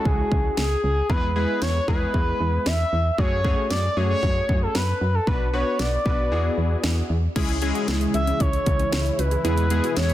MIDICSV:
0, 0, Header, 1, 7, 480
1, 0, Start_track
1, 0, Tempo, 521739
1, 1010, Time_signature, 4, 2, 24, 8
1, 9326, End_track
2, 0, Start_track
2, 0, Title_t, "Analog synth lead"
2, 0, Program_c, 0, 81
2, 48, Note_on_c, 0, 68, 92
2, 523, Note_off_c, 0, 68, 0
2, 529, Note_on_c, 0, 68, 91
2, 753, Note_off_c, 0, 68, 0
2, 766, Note_on_c, 0, 68, 85
2, 991, Note_off_c, 0, 68, 0
2, 1006, Note_on_c, 0, 71, 100
2, 1231, Note_off_c, 0, 71, 0
2, 1249, Note_on_c, 0, 71, 98
2, 1473, Note_off_c, 0, 71, 0
2, 1487, Note_on_c, 0, 73, 103
2, 1711, Note_off_c, 0, 73, 0
2, 1728, Note_on_c, 0, 71, 108
2, 2449, Note_on_c, 0, 76, 118
2, 2463, Note_off_c, 0, 71, 0
2, 2924, Note_off_c, 0, 76, 0
2, 2929, Note_on_c, 0, 73, 113
2, 3376, Note_off_c, 0, 73, 0
2, 3409, Note_on_c, 0, 74, 109
2, 3651, Note_on_c, 0, 73, 97
2, 3665, Note_off_c, 0, 74, 0
2, 3764, Note_off_c, 0, 73, 0
2, 3770, Note_on_c, 0, 73, 103
2, 4216, Note_off_c, 0, 73, 0
2, 4252, Note_on_c, 0, 69, 86
2, 4372, Note_on_c, 0, 71, 100
2, 4386, Note_off_c, 0, 69, 0
2, 4734, Note_on_c, 0, 69, 89
2, 4748, Note_off_c, 0, 71, 0
2, 4853, Note_on_c, 0, 71, 97
2, 4867, Note_off_c, 0, 69, 0
2, 5088, Note_off_c, 0, 71, 0
2, 5093, Note_on_c, 0, 73, 91
2, 5336, Note_on_c, 0, 74, 99
2, 5349, Note_off_c, 0, 73, 0
2, 6293, Note_off_c, 0, 74, 0
2, 7492, Note_on_c, 0, 76, 109
2, 7733, Note_on_c, 0, 73, 109
2, 7746, Note_off_c, 0, 76, 0
2, 8452, Note_on_c, 0, 71, 89
2, 8466, Note_off_c, 0, 73, 0
2, 8685, Note_off_c, 0, 71, 0
2, 8690, Note_on_c, 0, 71, 98
2, 9136, Note_off_c, 0, 71, 0
2, 9170, Note_on_c, 0, 73, 98
2, 9326, Note_off_c, 0, 73, 0
2, 9326, End_track
3, 0, Start_track
3, 0, Title_t, "Synth arpeggio sound"
3, 0, Program_c, 1, 84
3, 6770, Note_on_c, 1, 64, 90
3, 6935, Note_off_c, 1, 64, 0
3, 7130, Note_on_c, 1, 66, 72
3, 7213, Note_off_c, 1, 66, 0
3, 7251, Note_on_c, 1, 64, 86
3, 7333, Note_off_c, 1, 64, 0
3, 7370, Note_on_c, 1, 68, 76
3, 7452, Note_off_c, 1, 68, 0
3, 7490, Note_on_c, 1, 64, 83
3, 7573, Note_off_c, 1, 64, 0
3, 7611, Note_on_c, 1, 61, 77
3, 7693, Note_off_c, 1, 61, 0
3, 7731, Note_on_c, 1, 64, 90
3, 7896, Note_off_c, 1, 64, 0
3, 7971, Note_on_c, 1, 61, 85
3, 8053, Note_off_c, 1, 61, 0
3, 8091, Note_on_c, 1, 61, 78
3, 8173, Note_off_c, 1, 61, 0
3, 8210, Note_on_c, 1, 64, 85
3, 8375, Note_off_c, 1, 64, 0
3, 8451, Note_on_c, 1, 66, 77
3, 8533, Note_off_c, 1, 66, 0
3, 8571, Note_on_c, 1, 68, 74
3, 8653, Note_off_c, 1, 68, 0
3, 8690, Note_on_c, 1, 64, 96
3, 8855, Note_off_c, 1, 64, 0
3, 9051, Note_on_c, 1, 66, 73
3, 9133, Note_off_c, 1, 66, 0
3, 9171, Note_on_c, 1, 64, 87
3, 9253, Note_off_c, 1, 64, 0
3, 9291, Note_on_c, 1, 68, 75
3, 9326, Note_off_c, 1, 68, 0
3, 9326, End_track
4, 0, Start_track
4, 0, Title_t, "Synth keys"
4, 0, Program_c, 2, 88
4, 0, Note_on_c, 2, 56, 73
4, 0, Note_on_c, 2, 61, 66
4, 0, Note_on_c, 2, 64, 69
4, 0, Note_on_c, 2, 66, 78
4, 591, Note_off_c, 2, 56, 0
4, 591, Note_off_c, 2, 61, 0
4, 591, Note_off_c, 2, 64, 0
4, 591, Note_off_c, 2, 66, 0
4, 1009, Note_on_c, 2, 64, 64
4, 1009, Note_on_c, 2, 68, 77
4, 1010, Note_on_c, 2, 56, 72
4, 1010, Note_on_c, 2, 59, 66
4, 1205, Note_off_c, 2, 56, 0
4, 1205, Note_off_c, 2, 59, 0
4, 1205, Note_off_c, 2, 64, 0
4, 1205, Note_off_c, 2, 68, 0
4, 1248, Note_on_c, 2, 56, 75
4, 1248, Note_on_c, 2, 59, 67
4, 1249, Note_on_c, 2, 64, 69
4, 1249, Note_on_c, 2, 68, 80
4, 1640, Note_off_c, 2, 56, 0
4, 1640, Note_off_c, 2, 59, 0
4, 1640, Note_off_c, 2, 64, 0
4, 1640, Note_off_c, 2, 68, 0
4, 1728, Note_on_c, 2, 56, 75
4, 1728, Note_on_c, 2, 59, 67
4, 1728, Note_on_c, 2, 64, 66
4, 1728, Note_on_c, 2, 68, 82
4, 2510, Note_off_c, 2, 56, 0
4, 2510, Note_off_c, 2, 59, 0
4, 2510, Note_off_c, 2, 64, 0
4, 2510, Note_off_c, 2, 68, 0
4, 2928, Note_on_c, 2, 57, 69
4, 2928, Note_on_c, 2, 61, 66
4, 2928, Note_on_c, 2, 66, 66
4, 2929, Note_on_c, 2, 68, 76
4, 3124, Note_off_c, 2, 57, 0
4, 3124, Note_off_c, 2, 61, 0
4, 3124, Note_off_c, 2, 66, 0
4, 3125, Note_off_c, 2, 68, 0
4, 3167, Note_on_c, 2, 57, 72
4, 3167, Note_on_c, 2, 61, 69
4, 3167, Note_on_c, 2, 68, 80
4, 3168, Note_on_c, 2, 66, 66
4, 3559, Note_off_c, 2, 57, 0
4, 3559, Note_off_c, 2, 61, 0
4, 3559, Note_off_c, 2, 66, 0
4, 3559, Note_off_c, 2, 68, 0
4, 3649, Note_on_c, 2, 68, 83
4, 3650, Note_on_c, 2, 57, 73
4, 3650, Note_on_c, 2, 61, 67
4, 3650, Note_on_c, 2, 66, 68
4, 4430, Note_off_c, 2, 68, 0
4, 4431, Note_off_c, 2, 57, 0
4, 4431, Note_off_c, 2, 61, 0
4, 4431, Note_off_c, 2, 66, 0
4, 4852, Note_on_c, 2, 59, 72
4, 4852, Note_on_c, 2, 62, 68
4, 4852, Note_on_c, 2, 66, 65
4, 4852, Note_on_c, 2, 71, 78
4, 5046, Note_off_c, 2, 59, 0
4, 5046, Note_off_c, 2, 62, 0
4, 5046, Note_off_c, 2, 66, 0
4, 5046, Note_off_c, 2, 71, 0
4, 5091, Note_on_c, 2, 62, 66
4, 5091, Note_on_c, 2, 66, 68
4, 5091, Note_on_c, 2, 71, 82
4, 5092, Note_on_c, 2, 59, 70
4, 5481, Note_off_c, 2, 59, 0
4, 5481, Note_off_c, 2, 62, 0
4, 5481, Note_off_c, 2, 66, 0
4, 5481, Note_off_c, 2, 71, 0
4, 5571, Note_on_c, 2, 62, 67
4, 5571, Note_on_c, 2, 66, 66
4, 5571, Note_on_c, 2, 71, 79
4, 5572, Note_on_c, 2, 59, 72
4, 5799, Note_off_c, 2, 66, 0
4, 5800, Note_off_c, 2, 59, 0
4, 5810, Note_on_c, 2, 66, 68
4, 5811, Note_off_c, 2, 62, 0
4, 5811, Note_off_c, 2, 71, 0
4, 5811, Note_on_c, 2, 59, 78
4, 5811, Note_on_c, 2, 64, 72
4, 5811, Note_on_c, 2, 68, 82
4, 6591, Note_off_c, 2, 59, 0
4, 6591, Note_off_c, 2, 64, 0
4, 6591, Note_off_c, 2, 66, 0
4, 6591, Note_off_c, 2, 68, 0
4, 6771, Note_on_c, 2, 68, 97
4, 6772, Note_on_c, 2, 56, 84
4, 6772, Note_on_c, 2, 61, 80
4, 6772, Note_on_c, 2, 64, 79
4, 6966, Note_off_c, 2, 56, 0
4, 6966, Note_off_c, 2, 61, 0
4, 6966, Note_off_c, 2, 64, 0
4, 6966, Note_off_c, 2, 68, 0
4, 7011, Note_on_c, 2, 68, 95
4, 7012, Note_on_c, 2, 56, 89
4, 7012, Note_on_c, 2, 61, 79
4, 7012, Note_on_c, 2, 64, 79
4, 7791, Note_off_c, 2, 61, 0
4, 7791, Note_off_c, 2, 68, 0
4, 7792, Note_off_c, 2, 56, 0
4, 7792, Note_off_c, 2, 64, 0
4, 8690, Note_on_c, 2, 56, 70
4, 8690, Note_on_c, 2, 68, 79
4, 8691, Note_on_c, 2, 59, 64
4, 8691, Note_on_c, 2, 64, 67
4, 8885, Note_off_c, 2, 56, 0
4, 8885, Note_off_c, 2, 68, 0
4, 8886, Note_off_c, 2, 59, 0
4, 8886, Note_off_c, 2, 64, 0
4, 8931, Note_on_c, 2, 56, 77
4, 8931, Note_on_c, 2, 64, 67
4, 8931, Note_on_c, 2, 68, 82
4, 8932, Note_on_c, 2, 59, 68
4, 9326, Note_off_c, 2, 56, 0
4, 9326, Note_off_c, 2, 59, 0
4, 9326, Note_off_c, 2, 64, 0
4, 9326, Note_off_c, 2, 68, 0
4, 9326, End_track
5, 0, Start_track
5, 0, Title_t, "Analog synth pad"
5, 0, Program_c, 3, 89
5, 6770, Note_on_c, 3, 52, 69
5, 6770, Note_on_c, 3, 56, 69
5, 6771, Note_on_c, 3, 49, 80
5, 6771, Note_on_c, 3, 64, 86
5, 8671, Note_off_c, 3, 49, 0
5, 8671, Note_off_c, 3, 56, 0
5, 8691, Note_on_c, 3, 47, 82
5, 8692, Note_on_c, 3, 68, 72
5, 9326, Note_off_c, 3, 47, 0
5, 9326, Note_off_c, 3, 52, 0
5, 9326, Note_off_c, 3, 64, 0
5, 9326, Note_off_c, 3, 68, 0
5, 9326, End_track
6, 0, Start_track
6, 0, Title_t, "FM bass"
6, 0, Program_c, 4, 39
6, 50, Note_on_c, 4, 37, 102
6, 218, Note_off_c, 4, 37, 0
6, 291, Note_on_c, 4, 37, 94
6, 459, Note_off_c, 4, 37, 0
6, 529, Note_on_c, 4, 37, 103
6, 697, Note_off_c, 4, 37, 0
6, 769, Note_on_c, 4, 37, 95
6, 938, Note_off_c, 4, 37, 0
6, 1009, Note_on_c, 4, 40, 107
6, 1345, Note_off_c, 4, 40, 0
6, 1489, Note_on_c, 4, 40, 101
6, 1657, Note_off_c, 4, 40, 0
6, 1730, Note_on_c, 4, 40, 98
6, 1898, Note_off_c, 4, 40, 0
6, 1970, Note_on_c, 4, 40, 110
6, 2138, Note_off_c, 4, 40, 0
6, 2209, Note_on_c, 4, 40, 99
6, 2378, Note_off_c, 4, 40, 0
6, 2450, Note_on_c, 4, 40, 102
6, 2618, Note_off_c, 4, 40, 0
6, 2691, Note_on_c, 4, 40, 96
6, 2859, Note_off_c, 4, 40, 0
6, 2930, Note_on_c, 4, 42, 102
6, 3266, Note_off_c, 4, 42, 0
6, 3409, Note_on_c, 4, 42, 95
6, 3577, Note_off_c, 4, 42, 0
6, 3651, Note_on_c, 4, 42, 103
6, 3818, Note_off_c, 4, 42, 0
6, 3891, Note_on_c, 4, 42, 109
6, 4059, Note_off_c, 4, 42, 0
6, 4131, Note_on_c, 4, 42, 103
6, 4299, Note_off_c, 4, 42, 0
6, 4371, Note_on_c, 4, 42, 105
6, 4539, Note_off_c, 4, 42, 0
6, 4611, Note_on_c, 4, 42, 103
6, 4779, Note_off_c, 4, 42, 0
6, 4851, Note_on_c, 4, 35, 99
6, 5187, Note_off_c, 4, 35, 0
6, 5330, Note_on_c, 4, 35, 99
6, 5498, Note_off_c, 4, 35, 0
6, 5572, Note_on_c, 4, 35, 103
6, 5810, Note_on_c, 4, 40, 110
6, 5823, Note_off_c, 4, 35, 0
6, 5978, Note_off_c, 4, 40, 0
6, 6050, Note_on_c, 4, 40, 94
6, 6218, Note_off_c, 4, 40, 0
6, 6290, Note_on_c, 4, 40, 99
6, 6458, Note_off_c, 4, 40, 0
6, 6530, Note_on_c, 4, 40, 95
6, 6698, Note_off_c, 4, 40, 0
6, 6770, Note_on_c, 4, 37, 103
6, 7106, Note_off_c, 4, 37, 0
6, 7251, Note_on_c, 4, 37, 100
6, 7419, Note_off_c, 4, 37, 0
6, 7489, Note_on_c, 4, 37, 102
6, 7657, Note_off_c, 4, 37, 0
6, 7732, Note_on_c, 4, 37, 106
6, 7899, Note_off_c, 4, 37, 0
6, 7972, Note_on_c, 4, 37, 97
6, 8139, Note_off_c, 4, 37, 0
6, 8210, Note_on_c, 4, 37, 105
6, 8378, Note_off_c, 4, 37, 0
6, 8451, Note_on_c, 4, 37, 94
6, 8619, Note_off_c, 4, 37, 0
6, 8691, Note_on_c, 4, 40, 111
6, 9026, Note_off_c, 4, 40, 0
6, 9170, Note_on_c, 4, 40, 98
6, 9326, Note_off_c, 4, 40, 0
6, 9326, End_track
7, 0, Start_track
7, 0, Title_t, "Drums"
7, 50, Note_on_c, 9, 36, 84
7, 142, Note_off_c, 9, 36, 0
7, 291, Note_on_c, 9, 36, 88
7, 383, Note_off_c, 9, 36, 0
7, 528, Note_on_c, 9, 38, 117
7, 620, Note_off_c, 9, 38, 0
7, 1009, Note_on_c, 9, 36, 109
7, 1101, Note_off_c, 9, 36, 0
7, 1488, Note_on_c, 9, 38, 110
7, 1580, Note_off_c, 9, 38, 0
7, 1730, Note_on_c, 9, 36, 97
7, 1822, Note_off_c, 9, 36, 0
7, 1970, Note_on_c, 9, 36, 81
7, 2062, Note_off_c, 9, 36, 0
7, 2448, Note_on_c, 9, 38, 117
7, 2540, Note_off_c, 9, 38, 0
7, 2929, Note_on_c, 9, 36, 107
7, 3021, Note_off_c, 9, 36, 0
7, 3170, Note_on_c, 9, 36, 86
7, 3262, Note_off_c, 9, 36, 0
7, 3409, Note_on_c, 9, 38, 112
7, 3501, Note_off_c, 9, 38, 0
7, 3891, Note_on_c, 9, 36, 83
7, 3983, Note_off_c, 9, 36, 0
7, 4132, Note_on_c, 9, 36, 92
7, 4224, Note_off_c, 9, 36, 0
7, 4369, Note_on_c, 9, 38, 118
7, 4461, Note_off_c, 9, 38, 0
7, 4851, Note_on_c, 9, 36, 105
7, 4943, Note_off_c, 9, 36, 0
7, 5330, Note_on_c, 9, 38, 112
7, 5422, Note_off_c, 9, 38, 0
7, 5572, Note_on_c, 9, 36, 96
7, 5664, Note_off_c, 9, 36, 0
7, 6289, Note_on_c, 9, 38, 115
7, 6381, Note_off_c, 9, 38, 0
7, 6770, Note_on_c, 9, 36, 110
7, 6771, Note_on_c, 9, 42, 75
7, 6771, Note_on_c, 9, 49, 95
7, 6862, Note_off_c, 9, 36, 0
7, 6863, Note_off_c, 9, 42, 0
7, 6863, Note_off_c, 9, 49, 0
7, 6888, Note_on_c, 9, 42, 52
7, 6980, Note_off_c, 9, 42, 0
7, 7008, Note_on_c, 9, 42, 78
7, 7100, Note_off_c, 9, 42, 0
7, 7133, Note_on_c, 9, 42, 54
7, 7225, Note_off_c, 9, 42, 0
7, 7249, Note_on_c, 9, 42, 66
7, 7250, Note_on_c, 9, 38, 115
7, 7341, Note_off_c, 9, 42, 0
7, 7342, Note_off_c, 9, 38, 0
7, 7369, Note_on_c, 9, 42, 59
7, 7461, Note_off_c, 9, 42, 0
7, 7490, Note_on_c, 9, 42, 62
7, 7582, Note_off_c, 9, 42, 0
7, 7612, Note_on_c, 9, 42, 56
7, 7704, Note_off_c, 9, 42, 0
7, 7730, Note_on_c, 9, 42, 79
7, 7731, Note_on_c, 9, 36, 86
7, 7822, Note_off_c, 9, 42, 0
7, 7823, Note_off_c, 9, 36, 0
7, 7851, Note_on_c, 9, 42, 52
7, 7943, Note_off_c, 9, 42, 0
7, 7971, Note_on_c, 9, 42, 73
7, 7972, Note_on_c, 9, 36, 90
7, 8063, Note_off_c, 9, 42, 0
7, 8064, Note_off_c, 9, 36, 0
7, 8091, Note_on_c, 9, 42, 49
7, 8183, Note_off_c, 9, 42, 0
7, 8211, Note_on_c, 9, 38, 115
7, 8211, Note_on_c, 9, 42, 75
7, 8303, Note_off_c, 9, 38, 0
7, 8303, Note_off_c, 9, 42, 0
7, 8333, Note_on_c, 9, 42, 47
7, 8425, Note_off_c, 9, 42, 0
7, 8454, Note_on_c, 9, 42, 71
7, 8546, Note_off_c, 9, 42, 0
7, 8569, Note_on_c, 9, 42, 48
7, 8661, Note_off_c, 9, 42, 0
7, 8691, Note_on_c, 9, 42, 78
7, 8783, Note_off_c, 9, 42, 0
7, 8809, Note_on_c, 9, 42, 50
7, 8901, Note_off_c, 9, 42, 0
7, 8928, Note_on_c, 9, 42, 79
7, 9020, Note_off_c, 9, 42, 0
7, 9051, Note_on_c, 9, 42, 52
7, 9143, Note_off_c, 9, 42, 0
7, 9168, Note_on_c, 9, 42, 63
7, 9169, Note_on_c, 9, 38, 109
7, 9260, Note_off_c, 9, 42, 0
7, 9261, Note_off_c, 9, 38, 0
7, 9287, Note_on_c, 9, 42, 60
7, 9326, Note_off_c, 9, 42, 0
7, 9326, End_track
0, 0, End_of_file